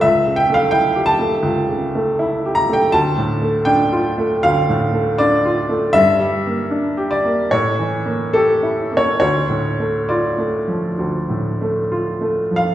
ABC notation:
X:1
M:4/4
L:1/16
Q:1/4=77
K:Aphr
V:1 name="Upright piano"
e2 g f g2 a8 b g | a4 g4 f4 d2 z2 | e6 d2 ^c4 A3 c | ^c4 d8 z3 f |]
V:2 name="Upright piano"
(3^C,,2 ^C,2 A,2 (3E2 G2 A,2 (3C,,2 C,2 A,2 (3E2 G2 A,2 | (3D,,2 A,,2 A,2 (3D2 F2 A,2 (3D,,2 A,,2 A,2 (3D2 F2 A,2 | (3G,,2 G,2 B,2 (3D2 G2 B,2 (3A,,2 E,2 B,2 (3G2 E2 B,2 | (3D,,2 A,,2 A,2 (3F2 A,2 F,2 (3D,,2 A,,2 A,2 (3F2 A,2 F,2 |]